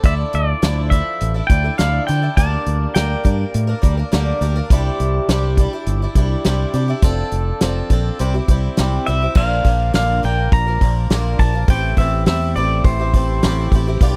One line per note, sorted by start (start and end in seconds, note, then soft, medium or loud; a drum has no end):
0.03 0.23 D2 medium
0.03 0.62 D3 medium
0.03 0.62 F3 medium
0.03 0.63 D4 medium
0.03 0.62 E4 medium
0.03 0.62 A4 medium
0.03 0.13 E5 medium
0.03 kick medium
0.03 closed hi-hat medium
0.33 0.53 D2 medium
0.33 0.89 D5 medium
0.33 closed hi-hat medium
0.62 1.00 D2 medium
0.62 0.92 D3 medium
0.62 0.90 F3 medium
0.62 0.91 D4 medium
0.62 0.91 E4 medium
0.62 0.92 A4 medium
0.62 snare loud
0.62 closed hi-hat medium
0.90 1.35 F3 medium
0.90 1.35 D4 medium
0.90 1.34 E4 medium
0.90 1.33 A4 medium
0.90 1.47 E5 medium
0.90 kick medium
0.90 closed hi-hat soft
1.21 1.40 A1 medium
1.21 closed hi-hat medium
1.34 1.49 D4 soft
1.34 1.50 E4 soft
1.34 1.50 A4 soft
1.47 1.69 D2 medium
1.47 1.64 F3 medium
1.47 1.65 D4 medium
1.47 1.64 E4 medium
1.47 1.76 G5 medium
1.47 kick medium
1.47 closed hi-hat medium
1.52 1.63 A4 medium
1.64 1.77 D4 soft
1.64 1.78 E4 soft
1.64 1.78 A4 soft
1.78 1.98 D2 medium
1.78 2.08 D3 medium
1.78 2.06 F3 medium
1.78 2.07 D4 medium
1.78 2.08 E4 medium
1.78 2.08 A4 medium
1.78 2.06 F5 medium
1.78 snare medium
1.78 closed hi-hat medium
2.07 2.28 D3 medium
2.07 2.23 F3 medium
2.07 2.23 D4 medium
2.07 2.22 E4 medium
2.07 2.21 A4 medium
2.07 2.37 G5 medium
2.07 closed hi-hat medium
2.22 2.38 D4 soft
2.22 2.38 E4 soft
2.22 2.37 A4 soft
2.37 2.56 D2 medium
2.37 2.93 D3 medium
2.37 2.95 G3 medium
2.37 2.94 A#3 medium
2.37 2.95 D4 medium
2.37 2.95 A#4 medium
2.37 2.94 A5 loud
2.37 kick medium
2.37 closed hi-hat medium
2.66 2.85 D2 medium
2.66 closed hi-hat medium
2.95 3.14 D2 medium
2.95 3.24 D3 medium
2.95 3.22 G3 medium
2.95 3.23 A#3 medium
2.95 3.24 D4 medium
2.95 3.25 A#4 medium
2.95 3.49 G5 medium
2.95 snare loud
2.95 closed hi-hat medium
3.24 3.44 G2 medium
3.24 3.68 G3 medium
3.24 3.68 A#3 medium
3.24 3.67 D4 medium
3.24 3.66 A#4 medium
3.24 kick medium
3.24 closed hi-hat medium
3.54 3.73 A2 medium
3.54 closed hi-hat medium
3.67 3.81 A#3 soft
3.67 3.82 D4 soft
3.67 3.83 A#4 medium
3.82 4.02 D2 medium
3.82 3.97 G3 medium
3.82 3.97 A#3 medium
3.82 3.98 D4 medium
3.82 3.96 A#4 medium
3.82 kick medium
3.82 closed hi-hat medium
3.97 4.11 A#3 soft
3.97 4.12 D4 soft
3.97 4.12 A#4 soft
4.12 4.31 D2 medium
4.12 4.41 D3 medium
4.12 4.40 G3 medium
4.12 4.41 A#3 medium
4.12 4.41 D4 medium
4.12 4.42 A#4 medium
4.12 snare medium
4.12 closed hi-hat medium
4.41 4.60 D2 medium
4.41 4.56 G3 medium
4.41 4.56 A#3 medium
4.41 4.56 D4 medium
4.41 4.54 A#4 medium
4.41 closed hi-hat medium
4.56 4.72 A#3 soft
4.56 4.71 D4 medium
4.56 4.70 A#4 medium
4.70 4.89 C2 medium
4.70 5.28 C3 medium
4.70 5.29 G3 medium
4.70 5.29 D4 medium
4.70 5.29 E4 medium
4.70 5.30 G4 medium
4.70 kick medium
4.70 closed hi-hat medium
5.00 5.18 C2 medium
5.00 closed hi-hat medium
5.28 5.66 C2 medium
5.28 5.58 C3 medium
5.28 5.57 G3 medium
5.28 5.58 D4 medium
5.28 5.59 E4 medium
5.28 5.59 G4 medium
5.28 snare loud
5.28 closed hi-hat medium
5.57 5.73 G3 medium
5.57 5.73 D4 medium
5.57 5.73 E4 medium
5.57 5.72 G4 medium
5.57 kick medium
5.57 closed hi-hat medium
5.73 6.03 D4 soft
5.73 6.02 E4 soft
5.73 6.01 G4 medium
5.86 6.05 G1 medium
5.86 closed hi-hat medium
6.02 6.16 D4 soft
6.02 6.16 E4 medium
6.02 6.16 G4 soft
6.15 6.35 C2 medium
6.15 6.44 G3 medium
6.15 6.45 D4 medium
6.15 6.45 E4 medium
6.15 6.45 G4 medium
6.15 kick medium
6.15 closed hi-hat medium
6.44 6.64 C2 medium
6.44 6.74 C3 medium
6.44 6.72 G3 medium
6.44 6.73 D4 medium
6.44 6.74 E4 medium
6.44 6.74 G4 medium
6.44 snare medium
6.44 closed hi-hat medium
6.73 6.93 C3 medium
6.73 6.88 G3 medium
6.73 6.89 D4 medium
6.73 6.88 E4 medium
6.73 6.87 G4 medium
6.73 closed hi-hat medium
6.88 7.03 D4 soft
6.88 7.04 E4 soft
6.88 7.03 G4 medium
7.02 7.22 F1 medium
7.02 7.60 F3 medium
7.02 7.61 C4 medium
7.02 7.61 D4 medium
7.02 7.62 A4 medium
7.02 kick loud
7.02 closed hi-hat medium
7.32 7.51 F1 medium
7.32 closed hi-hat medium
7.61 7.80 F1 medium
7.61 7.90 F3 medium
7.61 7.90 C4 medium
7.61 7.91 D4 medium
7.61 7.91 A4 medium
7.61 snare loud
7.61 closed hi-hat medium
7.90 8.09 A#1 medium
7.90 8.20 F3 medium
7.90 8.19 C4 medium
7.90 8.21 D4 medium
7.90 8.20 A4 medium
7.90 kick medium
7.90 closed hi-hat medium
8.19 8.39 C2 medium
8.19 8.34 C3 medium
8.19 8.34 G3 medium
8.19 8.34 C4 medium
8.19 8.34 E4 medium
8.19 8.33 G4 medium
8.19 closed hi-hat medium
8.34 8.49 C4 soft
8.34 8.49 E4 soft
8.34 8.49 G4 soft
8.48 8.67 C2 medium
8.48 8.78 G3 medium
8.48 8.78 C4 medium
8.48 8.79 E4 medium
8.48 8.79 G4 medium
8.48 kick medium
8.48 closed hi-hat medium
8.77 8.97 C2 medium
8.77 9.07 C3 medium
8.77 9.06 G3 medium
8.77 9.07 C4 medium
8.77 9.08 E4 medium
8.77 9.08 G4 medium
8.77 snare medium
8.77 closed hi-hat medium
9.06 9.26 C2 medium
9.06 9.22 G3 medium
9.06 9.22 C4 medium
9.06 9.22 E4 medium
9.06 9.21 G4 medium
9.06 9.37 E5 medium
9.06 closed hi-hat medium
9.22 9.37 C4 soft
9.22 9.37 E4 soft
9.22 9.37 G4 medium
9.35 9.64 A#1 medium
9.35 9.66 A#2 medium
9.35 9.66 D3 medium
9.35 9.64 F3 medium
9.35 9.64 A#3 medium
9.35 9.65 D4 medium
9.35 9.66 A#4 medium
9.35 9.94 F5 medium
9.35 kick loud
9.35 crash medium
9.64 9.93 A#1 medium
9.64 9.94 F3 medium
9.64 9.94 A#3 medium
9.64 9.94 D4 medium
9.64 9.94 A#4 medium
9.64 kick medium
9.64 open hi-hat soft
9.93 10.22 A#1 medium
9.93 10.23 A#2 medium
9.93 10.23 D3 medium
9.93 10.23 F3 medium
9.93 10.23 A#3 medium
9.93 10.24 D4 medium
9.93 10.24 A#4 medium
9.93 10.22 F5 medium
9.93 snare medium
9.93 open hi-hat medium
10.23 10.52 A#1 medium
10.23 10.67 F3 medium
10.23 10.67 A#3 medium
10.23 10.67 D4 medium
10.23 10.65 A#4 medium
10.23 10.51 G5 medium
10.23 open hi-hat soft
10.52 10.80 A#1 medium
10.52 11.39 A#5 loud
10.52 kick loud
10.52 open hi-hat medium
10.67 10.81 F3 soft
10.67 10.81 A#3 soft
10.67 10.82 D4 soft
10.67 10.81 A#4 soft
10.81 11.09 A#1 medium
10.81 11.11 F3 medium
10.81 11.11 A#3 medium
10.81 11.11 D4 medium
10.81 11.11 A#4 medium
10.81 kick medium
10.81 open hi-hat soft
11.10 11.38 A#1 medium
11.10 11.40 A#2 medium
11.10 11.40 D3 medium
11.10 11.38 F3 medium
11.10 11.39 A#3 medium
11.10 11.39 D4 medium
11.10 11.40 A#4 medium
11.10 snare loud
11.10 open hi-hat medium
11.39 11.67 A#1 medium
11.39 11.54 F3 medium
11.39 11.54 A#3 medium
11.39 11.54 D4 medium
11.39 11.53 A#4 medium
11.39 11.70 A5 medium
11.39 kick medium
11.39 open hi-hat medium
11.54 11.69 F3 soft
11.54 11.69 A#3 soft
11.54 11.69 D4 soft
11.54 11.69 A#4 soft
11.68 11.96 A1 medium
11.68 11.97 A3 medium
11.68 11.98 C4 medium
11.68 11.98 E4 medium
11.68 11.99 G4 medium
11.68 11.97 G5 medium
11.68 kick loud
11.68 open hi-hat medium
11.97 12.26 A1 medium
11.97 12.26 A3 medium
11.97 12.26 C4 medium
11.97 12.27 E4 medium
11.97 12.27 G4 medium
11.97 12.26 E5 medium
11.97 kick medium
11.97 open hi-hat medium
12.26 12.55 E2 medium
12.26 12.55 A3 medium
12.26 12.55 C4 medium
12.26 12.56 E4 medium
12.26 12.57 G4 medium
12.26 12.54 E5 medium
12.26 snare loud
12.26 open hi-hat medium
12.56 12.84 A1 medium
12.56 13.00 A3 medium
12.56 13.00 C4 medium
12.56 13.00 E4 medium
12.56 12.98 G4 medium
12.56 12.83 D5 medium
12.56 open hi-hat medium
12.84 13.41 A1 medium
12.84 13.68 C5 medium
12.84 kick loud
12.84 open hi-hat medium
12.99 13.14 C4 soft
12.99 13.15 E4 soft
12.99 13.14 G4 soft
13.14 13.42 A3 medium
13.14 13.43 C4 medium
13.14 13.43 E4 medium
13.14 13.44 G4 medium
13.14 kick medium
13.14 open hi-hat medium
13.42 13.71 A1 medium
13.42 13.72 A3 medium
13.42 13.73 C4 medium
13.42 13.73 E4 medium
13.42 13.73 G4 medium
13.42 snare loud
13.42 open hi-hat medium
13.72 14.00 A1 medium
13.72 13.88 A3 medium
13.72 13.88 C4 medium
13.72 13.87 E4 medium
13.72 13.86 G4 medium
13.72 kick medium
13.72 open hi-hat medium
13.87 14.02 C4 medium
13.87 14.02 E4 medium
13.87 14.02 G4 medium
14.01 14.16 B1 medium
14.01 14.16 B3 medium
14.01 14.16 D4 medium
14.01 14.16 F4 medium
14.01 14.16 G4 loud
14.01 kick loud
14.01 open hi-hat medium